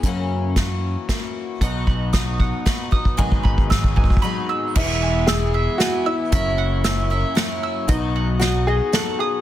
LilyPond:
<<
  \new Staff \with { instrumentName = "Mandolin" } { \time 3/4 \key e \major \tempo 4 = 115 r2. | fis''8 b''8 dis'''8 fis''8 b''8 dis'''8 | gis''8 b''8 e'''8 gis''8 b''8 e'''8 | e''8 gis''8 e'''8 e''8 gis''8 e'''8 |
e''8 fis''8 e'''8 e''8 fis''8 e'''8 | dis''8 fis''8 dis'''8 dis''8 fis''8 dis'''8 | }
  \new Staff \with { instrumentName = "Upright piano" } { \time 3/4 \key e \major r2. | r2. | r2. | e'4 gis'4 fis'8 e'8~ |
e'4. r4. | dis'4 fis'8 gis'8 a'8 gis'8 | }
  \new Staff \with { instrumentName = "Felt piano" } { \time 3/4 \key e \major r2. | <fis dis' b' dis''>2~ <fis dis' b' dis''>8 <fis dis' b' dis''>8 | <gis fis' b' dis''>4. <gis dis' fis' b'>4. | <gis b e' b' e''>2. |
<fis cis' e' ais' e''>2. | <fis b dis' b' dis''>2. | }
  \new Staff \with { instrumentName = "Felt piano" } { \clef bass \time 3/4 \key e \major r2. | <b,, b,>2. | <gis,, gis,>2. | <e, e>2. |
<fis,, fis,>2. | <b,, b,>2. | }
  \new Staff \with { instrumentName = "Twelve-string acoustic guitar" } { \time 3/4 \key e \major <fis, cis e ais cis' fis'>4 <e ais cis' fis'>4 <e ais cis' fis'>4 | <b, fis b dis' fis'>4 <fis b dis' fis'>4 <fis b dis' fis'>8 <b dis' fis'>8 | <gis, dis fis b dis' gis'>4 <fis b dis' gis'>4 <fis b dis' gis'>4 | <e, b, e gis b e'>4 <e gis e'>4 <e gis b e'>4 |
<fis ais cis' e'>4 <fis ais cis' e'>8 <ais cis' e'>8 <fis ais cis' e'>4 | <b, fis b dis' fis'>4 <fis b dis' fis'>4 <fis b dis' fis'>4 | }
  \new Staff \with { instrumentName = "Fingered electric bass" } { \clef bass \time 3/4 \key e \major fis,2 r4 | b,,2 r4 | gis,,2 r4 | e,,2 r4 |
fis,,2 r4 | b,,2 r4 | }
  \new DrumStaff \with { instrumentName = "Drums" } \drummode { \time 3/4 <hh bd>4 <hh bd sn>4 <hh bd sn>4 | <hh bd>8 bd8 <hh bd sn>8 bd8 <hh bd sn>8 bd16 bd16 | bd16 bd16 bd16 bd16 <bd sn>16 bd16 bd32 bd32 bd32 bd32 r4 | <cymc bd>4 <hh sn>4 <hh sn>4 |
<hh bd>4 <hh sn>4 <hh sn>4 | <hh bd>4 <hh sn>4 <hh sn>4 | }
>>